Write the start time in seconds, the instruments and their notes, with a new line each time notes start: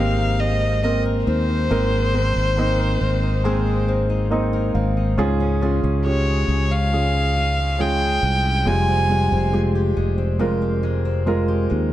Already playing: fretless electric bass G#1, grand piano G#2 D#3 A#3 C4 D#4 G4 G#4, steel-string acoustic guitar G#3 C4 D#4 A#4, violin F5
0.18 steel-string acoustic guitar D#4
0.40 steel-string acoustic guitar C4, violin D#5
0.61 steel-string acoustic guitar D#4
0.83 grand piano A#3 C4 A#4, steel-string acoustic guitar C4, violin D#5
1.05 steel-string acoustic guitar A#4
1.26 fretless electric bass D#2, steel-string acoustic guitar C4, violin C5
1.49 steel-string acoustic guitar D#4
1.70 fretless electric bass G#1, grand piano G#2 D#3 A#3 C4 A#4, steel-string acoustic guitar G#3 A#4
1.92 steel-string acoustic guitar D#4
2.14 grand piano A#3 C4 A#4, steel-string acoustic guitar C4
2.36 fretless electric bass G#1, steel-string acoustic guitar D#4
2.57 grand piano A#3 C4 D#4, steel-string acoustic guitar C4
2.79 steel-string acoustic guitar A#4
3.01 fretless electric bass G#1, steel-string acoustic guitar C4
3.23 steel-string acoustic guitar D#4
3.44 steel-string acoustic guitar G#3 A#4, grand piano A#3 C4 G#4
3.67 steel-string acoustic guitar D#4
3.88 steel-string acoustic guitar C4, grand piano C5
4.10 steel-string acoustic guitar D#4
4.30 grand piano A#3 C4 D#4 D#5, steel-string acoustic guitar C4
4.53 steel-string acoustic guitar A#4
4.74 fretless electric bass G#1, steel-string acoustic guitar C4, grand piano F5
4.97 steel-string acoustic guitar D#4
5.18 fretless electric bass C#2, grand piano G#2 C#4 F4 G#4, steel-string acoustic guitar C#3 G#4
5.40 steel-string acoustic guitar C#4
5.62 steel-string acoustic guitar G#3, grand piano C#4 F4 G#4
5.83 fretless electric bass C#2, steel-string acoustic guitar C#4
6.05 steel-string acoustic guitar G#3, grand piano C#4 F4 G4, violin C#5
6.27 steel-string acoustic guitar G#4
6.48 fretless electric bass C#2, steel-string acoustic guitar G#3
6.71 steel-string acoustic guitar C#4, violin F5
6.92 grand piano C#4 F4 G#4, steel-string acoustic guitar G#4
7.15 steel-string acoustic guitar C#4
7.36 steel-string acoustic guitar G#3
7.58 steel-string acoustic guitar C#4
7.78 steel-string acoustic guitar G#3, grand piano C#4 F4 G#4, violin G5
8.01 steel-string acoustic guitar G#4
8.23 fretless electric bass C2, steel-string acoustic guitar G#3
8.45 steel-string acoustic guitar C#4
8.65 fretless electric bass F1, steel-string acoustic guitar F2, grand piano C3 G3 G#3 F4, violin G#5
8.88 steel-string acoustic guitar C4
9.09 grand piano G3 G#3 F4, steel-string acoustic guitar G#3
9.32 fretless electric bass F1, steel-string acoustic guitar C4
9.52 grand piano G#3 F4 G4, steel-string acoustic guitar G#3
9.75 steel-string acoustic guitar G4
9.97 fretless electric bass F1, steel-string acoustic guitar G#3
10.18 steel-string acoustic guitar C4
10.39 steel-string acoustic guitar F2 G4, grand piano G#3 F4 A#4
10.62 steel-string acoustic guitar C4
10.83 steel-string acoustic guitar G#3
11.05 steel-string acoustic guitar C4
11.26 grand piano G#3 F4 A#4, steel-string acoustic guitar G#3
11.48 steel-string acoustic guitar G4
11.70 fretless electric bass D#2, steel-string acoustic guitar G#3